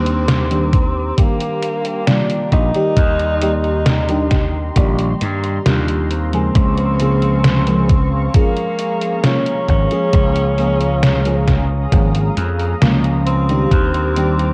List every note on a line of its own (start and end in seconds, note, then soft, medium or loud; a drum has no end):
0.00 1.11 D#2 loud
0.00 0.45 D#3 medium
0.00 0.46 G3 medium
0.00 0.46 A#3 medium
0.00 1.19 C4 loud
0.00 0.46 D4 medium
0.00 0.46 G4 medium
0.00 6.51 G4 medium
0.00 14.54 A#5 medium
0.00 2.94 D6 medium
0.06 closed hi-hat soft
0.28 snare loud
0.28 closed hi-hat loud
0.50 0.74 D#3 medium
0.50 0.74 G3 medium
0.50 0.74 A#3 medium
0.50 0.74 D4 medium
0.50 0.74 G4 loud
0.50 closed hi-hat soft
0.73 kick loud
0.73 closed hi-hat medium
1.17 2.02 D#3 medium
1.17 2.02 G3 medium
1.17 2.09 A#3 loud
1.17 2.02 A#3 medium
1.17 2.02 D4 medium
1.17 2.03 G4 medium
1.17 kick loud
1.17 closed hi-hat loud
1.41 closed hi-hat soft
1.63 closed hi-hat medium
1.85 closed hi-hat soft
2.07 2.69 D#3 medium
2.07 2.69 G3 medium
2.07 2.70 A#3 medium
2.07 2.52 D4 loud
2.07 2.70 D4 medium
2.07 2.70 F4 medium
2.07 snare loud
2.07 closed hi-hat medium
2.30 closed hi-hat soft
2.52 2.70 A#1 medium
2.52 5.17 D#4 loud
2.52 kick medium
2.52 closed hi-hat soft
2.75 3.36 D#3 medium
2.75 3.37 G3 medium
2.75 3.37 A#3 medium
2.75 3.37 G4 loud
2.75 3.37 D5 medium
2.75 closed hi-hat soft
2.97 4.69 D#2 loud
2.97 6.52 C6 medium
2.97 kick loud
2.97 closed hi-hat loud
3.20 closed hi-hat soft
3.42 4.04 D#3 medium
3.42 4.04 G3 medium
3.42 4.04 A#3 medium
3.42 4.04 G4 medium
3.42 4.04 D5 medium
3.42 closed hi-hat medium
3.64 closed hi-hat soft
3.86 snare loud
3.86 closed hi-hat loud
4.09 4.32 D#3 medium
4.09 4.32 G3 medium
4.09 4.32 A#3 medium
4.09 4.32 D4 medium
4.09 4.33 G4 loud
4.09 closed hi-hat soft
4.31 kick medium
4.31 snare medium
4.31 closed hi-hat medium
4.76 5.12 A#1 medium
4.76 5.60 D#3 medium
4.76 5.61 G3 medium
4.76 5.61 A#3 medium
4.76 5.61 G4 medium
4.76 5.61 D5 medium
4.76 kick loud
4.76 closed hi-hat medium
4.99 closed hi-hat soft
5.21 5.57 G2 medium
5.21 closed hi-hat medium
5.43 closed hi-hat soft
5.66 6.49 D#2 medium
5.66 6.28 D#3 medium
5.66 6.28 G3 medium
5.66 6.28 A#3 medium
5.66 6.28 D4 medium
5.66 6.28 F4 medium
5.66 snare loud
5.66 closed hi-hat loud
5.88 closed hi-hat soft
6.10 8.31 C4 loud
6.10 closed hi-hat soft
6.33 6.95 C#3 medium
6.33 6.95 F3 medium
6.33 6.95 G#3 medium
6.33 6.95 A#3 medium
6.33 6.95 G#4 loud
6.33 closed hi-hat soft
6.55 8.27 C#2 loud
6.55 13.68 G#4 medium
6.55 13.68 F5 medium
6.55 10.10 C#6 medium
6.55 kick loud
6.55 closed hi-hat medium
6.78 closed hi-hat soft
7.00 7.63 C#3 medium
7.00 7.62 F3 medium
7.00 7.62 G#3 medium
7.00 7.62 A#3 medium
7.00 7.63 G#4 medium
7.00 closed hi-hat medium
7.22 closed hi-hat soft
7.44 snare loud
7.44 closed hi-hat loud
7.67 7.90 F3 medium
7.67 7.90 G#3 medium
7.67 7.91 A#3 medium
7.67 7.91 C#4 medium
7.67 7.91 G#4 loud
7.67 closed hi-hat soft
7.89 kick loud
7.89 closed hi-hat medium
8.34 9.19 F3 medium
8.34 9.19 G#3 medium
8.34 9.20 A#3 loud
8.34 9.19 A#3 medium
8.34 9.19 C#4 medium
8.34 9.19 G#4 loud
8.34 kick loud
8.34 closed hi-hat loud
8.57 closed hi-hat soft
8.79 closed hi-hat medium
9.02 closed hi-hat soft
9.24 9.86 F3 medium
9.24 9.86 G#3 medium
9.24 9.86 A#3 medium
9.24 9.66 C#4 loud
9.24 9.86 C#4 medium
9.24 9.87 F4 medium
9.24 snare loud
9.24 closed hi-hat medium
9.46 closed hi-hat soft
9.69 9.87 G#1 medium
9.69 12.34 C#4 loud
9.69 kick medium
9.69 closed hi-hat soft
9.91 10.53 F3 loud
9.91 10.53 G#3 medium
9.91 10.53 A#3 medium
9.91 10.53 C#4 medium
9.91 10.54 G#4 loud
9.91 closed hi-hat soft
10.13 11.86 C#2 loud
10.13 13.68 D#6 medium
10.13 kick loud
10.13 closed hi-hat medium
10.36 closed hi-hat soft
10.58 11.20 F3 medium
10.58 11.20 G#3 medium
10.58 11.20 A#3 medium
10.58 11.21 C#4 medium
10.58 11.21 G#4 medium
10.58 closed hi-hat medium
10.81 closed hi-hat soft
11.03 snare loud
11.03 closed hi-hat medium
11.25 11.48 F3 medium
11.25 11.49 G#3 medium
11.25 11.49 A#3 medium
11.25 11.49 C#4 medium
11.25 11.49 G#4 loud
11.25 closed hi-hat soft
11.48 kick medium
11.48 snare medium
11.48 closed hi-hat medium
11.92 12.29 G#1 medium
11.92 12.77 F3 medium
11.92 12.77 G#3 medium
11.92 12.77 A#3 medium
11.92 12.77 C#4 medium
11.92 12.77 G#4 loud
11.92 kick loud
11.92 closed hi-hat loud
12.15 closed hi-hat soft
12.37 12.73 F2 medium
12.37 closed hi-hat medium
12.60 closed hi-hat soft
12.82 13.65 C#2 medium
12.82 13.44 F3 medium
12.82 13.44 G#3 medium
12.82 13.44 A#3 medium
12.82 13.44 C#4 medium
12.82 13.45 F4 medium
12.82 snare loud
12.82 closed hi-hat medium
13.05 closed hi-hat soft
13.27 14.54 C4 loud
13.27 closed hi-hat soft
13.49 14.11 D#3 medium
13.49 14.11 G3 medium
13.49 14.12 A#3 medium
13.49 14.12 D4 medium
13.49 14.12 G4 loud
13.49 closed hi-hat soft
13.71 14.54 D#2 loud
13.71 14.54 G4 medium
13.71 14.54 D6 medium
13.71 kick loud
13.71 closed hi-hat medium
13.94 closed hi-hat soft
14.16 14.54 D#3 medium
14.16 14.54 G3 medium
14.16 14.54 A#3 medium
14.16 14.54 D4 medium
14.16 14.54 G4 medium
14.16 closed hi-hat medium
14.39 closed hi-hat soft